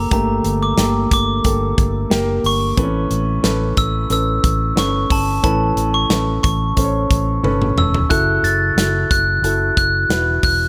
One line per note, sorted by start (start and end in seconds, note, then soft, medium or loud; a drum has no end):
0.00 0.11 A#3 medium
0.00 0.12 G4 medium
0.00 0.78 A4 medium
0.00 2.11 A#4 medium
0.11 0.39 G1 loud
0.11 1.07 G2 medium
0.11 1.08 D3 medium
0.11 0.59 A3 medium
0.11 0.58 A#3 medium
0.11 0.58 G4 medium
0.11 0.64 A#5 medium
0.11 kick loud
0.11 closed hi-hat medium
0.44 0.72 G1 medium
0.44 closed hi-hat medium
0.63 1.12 D6 medium
0.77 1.05 G1 medium
0.77 1.24 A#3 medium
0.77 1.24 G4 medium
0.77 1.25 A4 medium
0.77 snare loud
0.77 closed hi-hat medium
1.11 1.39 G1 medium
1.11 2.50 D6 medium
1.11 kick medium
1.11 closed hi-hat medium
1.44 1.72 G1 loud
1.44 1.91 A#3 medium
1.44 1.91 G4 medium
1.44 1.92 A4 medium
1.44 kick medium
1.44 closed hi-hat medium
1.78 2.05 G1 medium
1.78 kick medium
1.78 closed hi-hat medium
2.10 2.38 F#1 medium
2.10 2.57 A#3 medium
2.10 2.58 G4 medium
2.10 2.58 A#4 medium
2.10 snare loud
2.10 closed hi-hat medium
2.44 2.71 G1 medium
2.44 3.83 C#6 medium
2.44 open hi-hat medium
2.77 3.05 A1 medium
2.77 3.73 A2 medium
2.77 3.73 E3 medium
2.77 2.84 C4 medium
2.77 3.24 A4 medium
2.77 3.24 B4 medium
2.77 kick loud
2.77 closed hi-hat medium
2.83 3.27 C#4 medium
3.11 3.38 A1 medium
3.11 closed hi-hat medium
3.43 3.71 A1 medium
3.43 3.90 C#4 medium
3.43 3.91 A4 medium
3.43 3.91 B4 medium
3.43 snare medium
3.43 closed hi-hat loud
3.77 4.05 A1 medium
3.77 4.09 E6 medium
3.77 kick medium
3.77 closed hi-hat medium
4.10 4.38 A1 loud
4.10 4.57 C#4 medium
4.10 4.57 A4 medium
4.10 4.58 B4 medium
4.10 4.80 E6 medium
4.10 closed hi-hat medium
4.44 4.71 A1 medium
4.44 kick medium
4.44 closed hi-hat medium
4.76 5.04 G1 medium
4.76 5.23 C#4 medium
4.76 5.24 A4 medium
4.76 5.24 B4 medium
4.76 5.09 C#6 medium
4.76 snare loud
4.76 closed hi-hat medium
5.10 5.38 G1 medium
5.10 5.43 A5 medium
5.10 kick medium
5.10 open hi-hat medium
5.43 5.71 A1 medium
5.43 6.40 A2 medium
5.43 6.40 E3 medium
5.43 5.90 C#4 medium
5.43 5.90 A4 medium
5.43 5.91 B4 medium
5.43 5.91 A5 medium
5.43 kick loud
5.43 closed hi-hat medium
5.76 6.04 A1 medium
5.76 closed hi-hat medium
5.94 6.42 C#6 medium
6.10 6.37 A1 medium
6.10 6.57 C#4 medium
6.10 6.57 A4 medium
6.10 6.58 B4 medium
6.10 snare loud
6.10 closed hi-hat medium
6.43 6.71 A1 medium
6.43 7.81 C#6 medium
6.43 kick medium
6.43 closed hi-hat medium
6.76 7.04 A1 medium
6.76 7.24 C#4 medium
6.76 7.24 A4 medium
6.76 6.84 C5 medium
6.76 kick medium
6.76 closed hi-hat medium
6.84 7.27 C#5 medium
7.10 7.38 A1 medium
7.10 kick medium
7.10 closed hi-hat medium
7.43 7.71 G1 medium
7.43 7.90 C#4 medium
7.43 7.91 A4 medium
7.43 7.91 B4 medium
7.43 high tom medium
7.62 mid tom medium
7.76 8.04 E1 medium
7.76 8.12 E6 medium
7.76 mid tom medium
7.94 floor tom medium
8.09 8.38 F#1 medium
8.09 9.06 C#3 medium
8.09 8.57 E4 medium
8.09 8.57 F#4 medium
8.09 8.57 A4 loud
8.09 8.45 F#6 loud
8.09 kick medium
8.09 closed hi-hat medium
8.43 8.71 F#1 medium
8.43 9.12 A6 loud
8.43 closed hi-hat medium
8.76 9.04 F#1 medium
8.76 9.24 E4 medium
8.76 9.24 F#4 medium
8.76 9.24 A4 medium
8.76 snare loud
8.76 closed hi-hat medium
9.11 9.38 F#1 medium
9.11 9.73 F#6 loud
9.11 kick medium
9.11 closed hi-hat medium
9.42 9.70 F#1 medium
9.42 9.90 E4 medium
9.42 9.90 F#4 medium
9.42 9.91 A4 medium
9.42 closed hi-hat medium
9.77 10.04 F#1 medium
9.77 10.43 F#6 medium
9.77 kick medium
9.77 closed hi-hat medium
10.09 10.37 E1 loud
10.09 10.57 E4 medium
10.09 10.57 F#4 medium
10.09 10.57 B4 medium
10.09 snare loud
10.09 closed hi-hat medium
10.43 10.68 E1 medium
10.43 10.68 F#6 medium
10.43 kick medium
10.43 open hi-hat medium